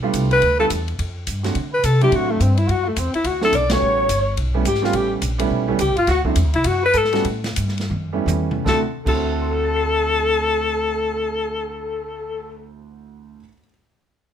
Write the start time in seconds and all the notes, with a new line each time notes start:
Already playing: B1
0.03 G3 A3 B3 D4 F4
0.13 C2, kick, hi-hat pedal, ride
0.31 B4, ride
0.42 D2, kick, ride
0.58 G3 A3 B3 D4 F4 A4
0.70 E2, kick, hi-hat pedal, ride
0.88 ride
0.99 F2, kick, ride
1.27 G2, kick, hi-hat pedal, ride
1.43 F#3 A3 C4 D4 F#4, snare, ride
1.55 D3, kick, ride
1.73 B4
1.84 C3 A4, kick, hi-hat pedal, ride
2.01 F#3 A3 C4 D4 E4 G4, ride
2.12 A2 F#4, kick, ride
2.29 A3
2.40 G2 C4, kick, hi-hat pedal, ride
2.56 E4, ride
2.67 F#2 F#4, kick, ride
2.85 A3
2.96 E2 C4, kick, hi-hat pedal, ride
3.14 E4, muted upright bass stroke, ride
3.24 D2 F#4, kick, ride
3.41 F#3 A3 C4 D4 E4 A4, snare
3.53 B1 D5, kick, hi-hat pedal, ride
3.70 G3 A3 B3 C#4 F#4 C#5, snare, ride
3.82 A1
4.09 G1, kick, hi-hat pedal, ride
4.37 B1, kick, ride
4.54 G3 A3 B3 C#4 E4
4.65 G#1 G4, kick, hi-hat pedal, ride
4.74 snare
4.82 G3 A3 B3 C#4 F4 G4, snare
4.93 A1 G4, kick, ride
5.22 A#1, kick, hi-hat pedal, ride
5.38 G3 A3 B3 C#4 E4, ride
5.50 B1, kick
5.68 G3 A3 B3 C#4 E4
5.79 C#2 G4, kick, hi-hat pedal, ride
5.88 A1
5.96 G1 F4, ride
6.07 D2 F#4, kick, snare, ride
6.25 F#3 A3 C4 D4 E4, kick
6.36 E2, kick, hi-hat pedal, ride
6.44 D2
6.54 C2 E4, ride
6.64 F#2 F#4, kick, ride
6.83 B4
6.93 G#2 A4, kick, hi-hat pedal, ride
6.98 A4
7.04 snare
7.12 G3 A3 B3 C#4 F#4, snare, ride
7.25 A2, kick, ride
7.44 snare, ride
7.56 G2, kick, hi-hat pedal, ride
7.68 snare
7.78 snare, ride
7.90 F#2, high tom
8.13 G3 A3 B3 C#4 E4
8.26 E2, hi-hat pedal, high tom
8.51 mid tom
8.64 D2 D3 C4 E4 F#4 A4, kick, snare
9.05 D2 D3 C4 E4 F#4 A4, kick, crash
9.14 C5
9.22 E5
9.31 A5
9.41 C6
9.52 E6
9.64 A6
9.76 C7